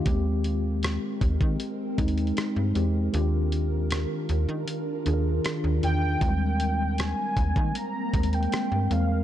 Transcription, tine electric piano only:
\new Staff \with { instrumentName = "Tine electric piano" } { \time 4/4 \key aes \lydian \tempo 4 = 78 <aes ces' c' g'>4. r4 <aes c' ees'>4 <aes c' g'>8 | <ees d' f' g'>4. r4 <ees d' f' aes' bes'>4 <ees d' f' bes'>8 | <g aes c' f'>4. r4 <aes c' bes'>4 <aes c' bes'>8 | }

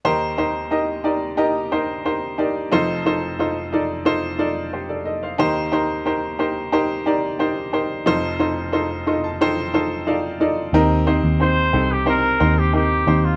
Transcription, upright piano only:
<<
  \new Staff \with { instrumentName = "Upright piano" } { \time 4/4 \key ees \lydian \tempo 4 = 90 << { r1 | r2. <g' c''>16 <a' d''>16 <a' ees''>16 <c'' f''>16~ | <c'' f''>16 r2. r8. | r4. c'''16 a''16 g''8 a''8 f''8 ees''8 |
r1 | } \\ { <ees' g' bes' c''>8 <ees' g' bes' c''>8 <ees' g' bes' ees''>8 <ees' g' bes' d''>8 <ees' g' bes' ees''>8 <ees' g' bes' c''>8 <ees' g' bes' c''>8 <ees' g' bes' d''>8 | <ees' f' a' c''>8 <ees' f' a' c''>8 <ees' f' a' c''>8 <ees' f' a' d''>8 <ees' f' a' c''>8 <ees' f' a' d''>8 r4 | <ees' g' bes' c''>8 <ees' g' bes' c''>8 <ees' g' bes' c''>8 <ees' g' bes' c''>8 <ees' g' bes' c''>8 <ees' g' bes' d''>8 <ees' g' bes' c''>8 <ees' g' bes' c''>8 | <ees' f' a' c''>8 <ees' f' a' c''>8 <ees' f' a' c''>8 <ees' f' a' ees''>8 <ees' f' a' c''>8 <ees' f' a' c''>8 <ees' f' a' d''>8 <ees' f' a' d''>8 |
<c' ees' g' bes'>8 <c' ees' g' c''>8 <c' ees' g' c''>8 <c' ees' g' a'>8 <c' ees' g' c''>8 <c' ees' g' c''>8 <c' ees' g' bes'>8 <c' ees' g' c''>8 | } >> }
  \new Staff \with { instrumentName = "Upright piano" } { \clef bass \time 4/4 \key ees \lydian <ees, ees>1 | <f,, f,>1 | <ees, ees>1 | <f,, f,>1 |
ees4. r2 r8 | }
>>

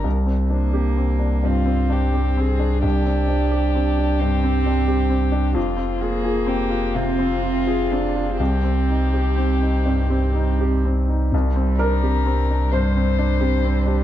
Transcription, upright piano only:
\new Staff \with { instrumentName = "Upright piano" } { \time 6/8 \key f \dorian \tempo 4. = 43 << { r2. | r2. | r2. | r2. |
r8 bes'4 c''4. | } \\ { c,16 c'16 d'16 g'16 c'16 d'16 g,16 c'16 d'16 g'16 c'16 d'16 | c,16 c'16 d'16 g'16 c'16 d'16 g,16 c'16 d'16 g'16 c'16 d'16 | f,16 c'16 f'16 aes'16 c'16 f'16 c16 c'16 f'16 aes'16 c'16 f'16 | c,16 c'16 ees'16 g'16 c'16 ees'16 g,16 c'16 ees'16 g'16 c'16 ees'16 |
c,16 c'16 d'16 g'16 c'16 d'16 g,16 c'16 d'16 g'16 c'16 d'16 | } >> }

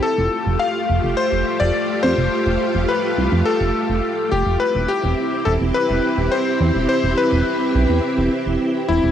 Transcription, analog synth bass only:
\new Staff \with { instrumentName = "Analog synth bass" } { \clef bass \time 4/4 \key f \lydian \tempo 4 = 105 r16 f,,16 r16 f,,16 r8 f,,16 f,,16 r16 f,,16 r16 f,,16 r8 f,16 f,,16 | r16 f,,16 r16 f,,16 r8 c,16 f,16 r16 f,,16 r16 f,,16 r8 f,,16 f,,16 | r16 e,,16 r16 e,,16 r8 e,,16 e,,16 r16 e,,16 r16 e,,16 r8 e,16 e,,16 | r16 e,,16 r16 e,,16 r8 b,,16 e,16 r16 e,,16 r16 e,,16 r8 e,,16 e,,16 | }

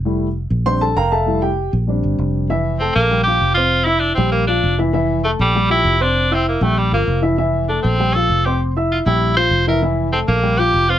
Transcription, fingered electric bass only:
\new Staff \with { instrumentName = "Fingered electric bass" } { \clef bass \time 4/4 \key f \major \tempo 4 = 197 f,,4. bes,,4. f,,4~ | f,,4. bes,,4 g,,8 f,,4~ | f,,4. bes,,4. f,,4~ | f,,4. bes,,4. f,,4~ |
f,,4. bes,,4. f,,4~ | f,,4. bes,,4 g,,8 f,,4~ | f,,4. bes,,4. f,,4~ | f,,4. bes,,4. f,,4~ |
f,,4. bes,,4. f,,4 | }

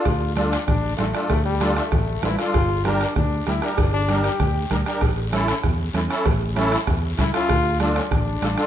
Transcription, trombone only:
\new Staff \with { instrumentName = "Trombone" } { \time 4/4 \key d \minor \tempo 4 = 194 f'4 d'4 d'4 a4 | a8 g4 a4. e'8 f'8~ | f'4 d'4 d'4 e'8.~ e'32 e'32 | d'8 d'4 g'2 r8 |
r1 | r2. e'8 f'8~ | f'4 d'8 d'2~ d'8 | }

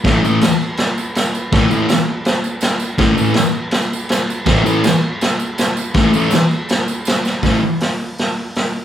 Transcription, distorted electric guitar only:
\new Staff \with { instrumentName = "Distorted electric guitar" } { \clef bass \time 4/4 \key c \major \tempo 4 = 163 <a, e a>8 <a, e a>8 r2. | <a, e a>8 <a, e a>8 r2. | <a, e a>8 <a, e a>8 r2. | <a, e a>8 <a, e a>8 r2. |
<a, e a>8 <a, e a>8 r2. | <a, e a>8 r2. r8 | }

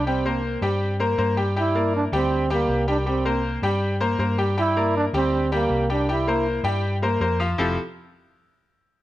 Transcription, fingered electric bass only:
\new Staff \with { instrumentName = "Fingered electric bass" } { \clef bass \time 4/4 \key c \mixolydian \tempo 4 = 159 c,4. g,4. g,4~ | g,4. d,4. c,4~ | c,4. g,4. g,4~ | g,4. d,4. c,4~ |
c,4. g,4. f,4 | f,,8 r2. r8 | }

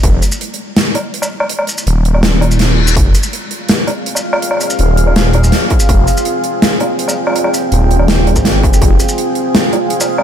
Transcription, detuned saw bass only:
\new Staff \with { instrumentName = "Detuned saw bass" } { \clef bass \time 4/4 \key f \minor \tempo 4 = 164 f,,8 r2. r8 | r4 ees,,4. ees,,4. | f,,8 r2. r8 | r4 ees,,2 r4 |
f,,8 r2. r8 | r4 ees,,4.~ ees,,16 aes,,8. f,,8 | f,,8 r2. r8 | }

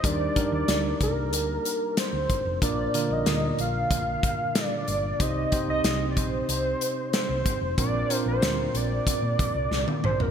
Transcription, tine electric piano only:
<<
  \new Staff \with { instrumentName = "Tine electric piano" } { \time 4/4 \key bes \mixolydian \tempo 4 = 93 <d' ees' g' bes'>8 <d' ees' g' bes'>4. r2 | <bes d' f' bes'>8 <d bes f' bes'>4. r2 | <c' ees' g' c''>8 <c' ees' g' c''>4. r2 | <c' d' f' bes'>8 <c' d' f' bes'>4. r2 | }
  \new Staff \with { instrumentName = "Tine electric piano" } { \clef bass \time 4/4 \key bes \mixolydian g4. r2 r8 | bes,4. r2 r8 | c4. r2 r8 | bes,4. r2 r8 | }
>>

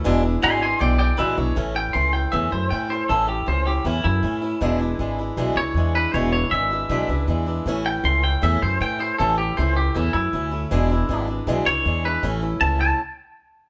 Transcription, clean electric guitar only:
\new Staff \with { instrumentName = "Clean electric guitar" } { \time 4/4 \key a \major \tempo 4 = 158 r4 <gis'' c'''>8 <gis'' c'''>8 <d'' g''>8 <d'' g''>8 <b' e''>8 cis''8 | r8 g''8 c'''8 g''8 e''8 c''8 g''8 c''8 | a'8 g'8 c''8 g'8 e'8 e'4.~ | e'4. r4 cis''4 b'8 |
cis''8 cis''8 e''2 r4 | r8 g''8 c'''8 g''8 e''8 c''8 g''8 c''8 | a'8 g'8 c''8 g'8 e'8 e'4.~ | e'4. r4 cis''4 b'8 |
r4 a''8 a''8 r2 | }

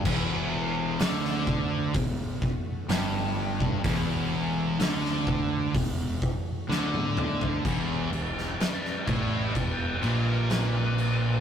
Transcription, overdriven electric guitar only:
\new Staff \with { instrumentName = "Overdriven electric guitar" } { \clef bass \time 4/4 \key e \minor \tempo 4 = 63 e,4 d4 e,8 r8 g,4 | e,4 d4 e,8 r8 d4 | e,8 e,8 r8 a,8 e,8 ais,4. | }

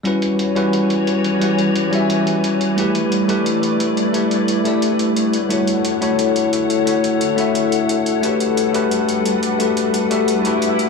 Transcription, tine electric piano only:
\new Staff \with { instrumentName = "Tine electric piano" } { \time 4/4 \key e \dorian \tempo 4 = 176 <g cis' e' fis' b'>4. <g cis' e' fis' b'>8 r2 | <g cis' e' fis' b'>4. <g cis' e' fis' e''>2~ <g cis' e' fis' e''>8 | <a d' e' g' b'>4. <a d' e' g' b'>8 r2 | <a d' e' g' b'>4. <a d' e' g' d''>2 r8 |
<a d' e' fis' cis''>4. <a d' e' fis' cis''>8 r2 | <a d' e' fis' cis''>4. <a d' e' fis' e''>2~ <a d' e' fis' e''>8 | <a d' fis' g' b'>4. <a d' fis' g' b'>8 r2 | <a d' fis' g' b'>4. <a d' fis' g' e''>4 <a d' fis' g' b'>4. | }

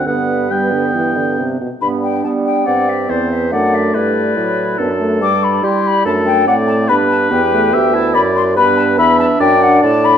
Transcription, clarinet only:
\new Staff \with { instrumentName = "Clarinet" } { \time 4/4 \key g \major \tempo 4 = 142 b4 b2~ b8 r8 | b4 b4 c'2 | d'4 e'2 d'4 | d'4 e'4 d'4 c'4 |
d'4 g'4 g'8 e'4 r8 | d'1 | }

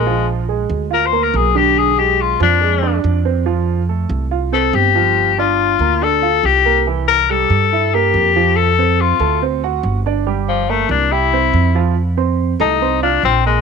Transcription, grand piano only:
\new Staff \with { instrumentName = "Grand piano" } { \time 4/4 \key g \minor \tempo 4 = 141 <f f'>4 <aes aes'>4 <f' f''>8 <bes bes'>4 <d d'>8~ | <d d'>8 <gis gis'>4 <f f'>8 <gis gis'>8 <d' d''>4 <c' c''>8 | <f f'>4 <a a'>4 <f' f''>8 <c' c''>4 <f f'>8~ | <f f'>8 <d' d''>4 <bes bes'>8 <d' d''>8 <f' f''>4 <bes bes'>8 |
<e e'>4 <g g'>4 <e' e''>8 <bes bes'>4 <f f'>8~ | <f f'>8 <c' c''>4 <a a'>8 <c' c''>8 <fis' fis''>4 <d' d''>8 | <g g'>4 <bes bes'>4 <g' g''>8 <c' c''>4 <f f'>8 | r8 <c' c'' c'''>4 <a a' a''>8 <c' c'' c'''>8 <f' f'' f'''>4 <bes bes' bes''>8 | }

